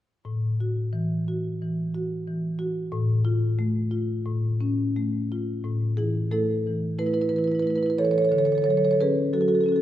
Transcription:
0.25 A2
0.60 F#4
0.93 E3
1.28 F#4
1.62 E3
1.94 F#4
2.27 E3
2.59 F#4
2.92 A2
3.25 F4
3.59 A3
3.91 F4
4.26 A2
4.61 C#4
4.96 A3
5.32 F4
5.64 A2
5.97 E3 E4 G#4
6.31 A3 E4 A4
6.67 E3
6.99 A3 E4 B4
7.06 E4 B4
7.13 E4 B4
7.21 E4 B4
7.29 E3 E4 B4
7.36 E4 B4
7.44 E4 B4
7.52 E4 B4
7.60 E4 B4
7.65 A3 B4
7.70 E4
7.76 E4 B4
7.83 E4 B4
7.90 B4
7.98 E3 A4 C#5
8.05 A4 C#5
8.11 A4 C#5
8.18 A4 C#5
8.25 C#5
8.29 D3 A4 C#5
8.38 A4 C#5
8.45 A4 C#5
8.52 A4 C#5
8.58 C#5
8.62 F#3 A4 C#5
8.70 A4 C#5
8.77 A4 C#5
8.84 A4 C#5
8.91 A4 C#5
9.00 C#4 G#4 B4
9.33 F#3 F#4 A4
9.41 F#4 A4
9.48 F#4 A4
9.55 F#4 A4
9.61 F#4 A4
9.66 C#4 A4
9.72 F#4 A4

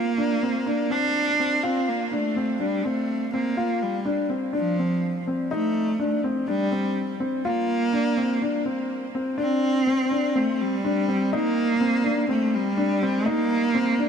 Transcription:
Already playing: A#3
0.18 D4
0.43 C4
0.66 D4
0.90 C4 D4
1.40 C4
1.63 C4 F4
1.88 A#3
2.11 A3 D4
2.36 C4
2.60 G3 D4
2.85 A3 C4
3.33 A#3 C4
3.57 F4
3.82 G3
4.05 D4
4.30 C4
4.53 F3 D4
4.79 C4
5.27 C4
5.51 A3 D#4
6.00 D4
6.24 C4
6.48 G3 D4
6.72 C4
7.20 C4
7.45 A#3 F4
7.93 D4
8.17 C4
8.42 D4
8.66 C4
9.15 C4
9.38 C4 D4
9.87 C4
10.11 D4
10.36 A3 C4
10.61 G3
10.84 D4
11.09 C4
11.33 A#3 D#4
11.81 C4
12.04 D4
12.29 A3 C4
12.54 G3
12.77 D4
13.02 C4
13.26 A#3 D#4
13.75 C4
13.99 D4

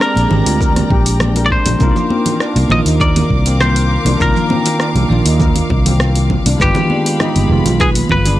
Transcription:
Already playing: G#3 C4 D4 G4 D5 G5 A#5
0.00 D4 A#4, cross-stick, shaker
0.16 A#1, open hi-hat, high conga, shaker
0.28 G#1 G#3 C4 D4, high bongo, low conga
0.33 G4
0.46 D2 F4, open hi-hat, shaker
0.61 A#4, kick, shaker
0.76 cross-stick, open hi-hat, high bongo, high conga, low conga, shaker
0.90 A#1 G4, kick
1.06 open hi-hat, shaker
1.20 D4, cross-stick, high conga, low conga, shaker
1.36 A#4, open hi-hat, high bongo, shaker
1.46 D5
1.50 D4 C5, kick
1.66 A#1, open hi-hat, high conga, low conga, shaker
1.79 C2 A#3 D4 D#4 A#4 F5 D6, kick, low conga, shaker
1.83 F4
1.96 high bongo, low conga, shaker
2.10 C4, high conga
2.26 open hi-hat, low conga, shaker
2.40 D4, cross-stick, shaker
2.56 C2, open hi-hat, high bongo, high conga, shaker
2.68 A#1 D#3 A#3 C5 D#5, low conga
2.72 F4
2.85 D#2 D#4, open hi-hat, shaker
3.00 A#4 D5, kick, high bongo, shaker
3.16 open hi-hat, high conga, low conga, shaker
3.30 C2, kick
3.46 C4, open hi-hat, shaker
3.60 C5, cross-stick, high bongo, high conga, low conga, shaker
3.76 open hi-hat, shaker
4.05 C2 D4, open hi-hat, high bongo, high conga, low conga, shaker
4.17 C2 D#3 A#3 D4 A#4, kick, shaker
4.22 F4 A#4
4.36 low conga, shaker
4.50 C4, high conga, low conga
4.66 open hi-hat, high bongo, shaker
4.80 D4, cross-stick, shaker
4.95 C2, open hi-hat, high conga, low conga, shaker
5.08 A#1 D#3 A#3 D5, high bongo
5.13 F4
5.25 D#2 D#4, open hi-hat, shaker
5.40 A#4, kick, low conga, shaker
5.56 open hi-hat, high conga, shaker
5.70 C2, kick, high bongo
5.86 C4, open hi-hat, low conga, shaker
6.00 cross-stick, high conga, shaker
6.16 open hi-hat, high bongo, shaker
6.30 kick, low conga
6.46 C2 D4, open hi-hat, high conga, shaker
6.58 G1 D#3 G#3 B3 B4 B5, kick, shaker
6.62 F4 G4
6.75 high bongo, low conga, shaker
6.90 D4, high conga
7.06 open hi-hat, shaker
7.20 D#4, cross-stick, high bongo, low conga, shaker
7.36 G1, open hi-hat, high conga, shaker
7.48 F1 D#3 G#3 B3
7.52 F4
7.65 B1 F4, open hi-hat, low conga, shaker
7.80 G#4 B4, kick, high bongo, shaker
7.95 open hi-hat, high conga, shaker
8.09 G1 B4, kick, low conga
8.25 D4, open hi-hat, high bongo, shaker

